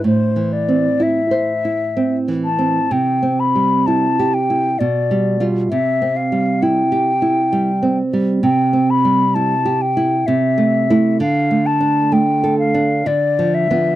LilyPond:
<<
  \new Staff \with { instrumentName = "Flute" } { \time 3/4 \key c \major \tempo 4 = 64 c''8 d''8 e''4. a''8 | g''8 b''8 a''8 g''8 d''8 r8 | e''8 f''8 g''4. r8 | g''8 b''8 a''8 g''8 e''4 |
f''8 a''8 g''8 f''8 d''8 e''8 | }
  \new Staff \with { instrumentName = "Nylon-string guitar" } { \time 3/4 \key c \major \tuplet 3/2 { a,8 e8 c'8 e'8 c''8 e'8 c'8 e8 c'8 } | \tuplet 3/2 { c8 c'8 g8 e'8 g'8 e'8 b,8 g8 <g f'>8 } | \tuplet 3/2 { c8 c'8 g8 e'8 g'8 e'8 g8 c'8 g8 } | \tuplet 3/2 { c8 c'8 g8 e'8 g'8 e'8 c8 a8 <a e'>8 } |
\tuplet 3/2 { d8 a8 d'8 a8 a'8 d'8 d8 f8 <f b>8 } | }
>>